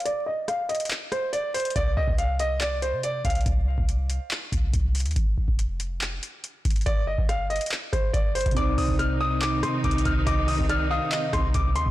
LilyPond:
<<
  \new Staff \with { instrumentName = "Grand piano" } { \time 4/4 \key c \minor \tempo 4 = 141 d''8 ees''8 f''8 ees''8 r8 c''8 d''8 c''8 | d''8 ees''8 f''8 ees''8 d''8 c''8 d''8 f''8 | r1 | r1 |
d''8 ees''8 f''8 ees''8 r8 c''8 d''8 c''8 | d'''8 ees'''8 f'''8 ees'''8 d'''8 c'''8 d'''8 f'''8 | d'''8 ees'''8 f'''8 ees'''8 r8 c'''8 d'''8 c'''8 | }
  \new Staff \with { instrumentName = "Synth pluck" } { \time 4/4 \key c \minor r1 | r1 | r1 | r1 |
r1 | d''2. r4 | ees''4 d''8 f''8 ees''2 | }
  \new Staff \with { instrumentName = "Tine electric piano" } { \time 4/4 \key c \minor r1 | r1 | r1 | r1 |
r1 | <c c' ees' c''>1~ | <c c' ees' c''>1 | }
  \new Staff \with { instrumentName = "String section" } { \clef bass \time 4/4 \key c \minor r1 | r1 | r1 | r1 |
r1 | <c ees ees'>1~ | <c ees ees'>1 | }
  \new Staff \with { instrumentName = "808-style bass" } { \clef bass \time 4/4 \key c \minor r1 | c,8 c,16 c,2 c8. c,8 | c,8. c,4 r8. c,8 c,8. ees,16 | g,,8 g,,16 f,,4.~ f,,16 r4 g,,8 |
g,,8. g,,4 r8. g,,8 g,,8. g,,16 | c,8 c,16 c,4.~ c,16 c8 c,8 c,8 | c,8. c,4 r8. c,8 c,8 ees,16 c,16 | }
  \new DrumStaff \with { instrumentName = "Drums" } \drummode { \time 4/4 hh4 <hh ss>8 hh32 hh32 hh32 hh32 hc8 <hh ss>8 hh8 <hh hho>32 hh32 hh32 hh32 | <hh bd>8. bd16 hh8 hh8 <hc hh>8 hh8 hh8 <hh bd>32 hh32 hh32 hh32 | <hh bd>8. bd16 hh8 hh8 <hc hh>8 <hh bd>8 <hh bd>8 <hh hho>32 hh32 hh32 hh32 | <hh bd>8. bd16 hh8 hh8 <hc hh>8 hh8 hh8 <hh bd>32 hh32 hh32 hh32 |
<hh bd>8. bd16 <hh ss>8 hh32 hh32 hh32 hh32 <hc hh>8 <hh bd ss>8 <hh bd>8 <hh hho>32 hh32 <hh bd>32 hh32 | <hh bd>8 hho16 bd16 <hh ss>4 <hc hh>8 <hh ss>8 \tuplet 3/2 { <hh bd>16 hh16 hh16 <hh bd>16 r16 r16 } | <hh bd>8 hho16 bd16 <hh ss>4 <hc hh>8 <hh bd ss>8 <hh bd>8 hh16 bd16 | }
>>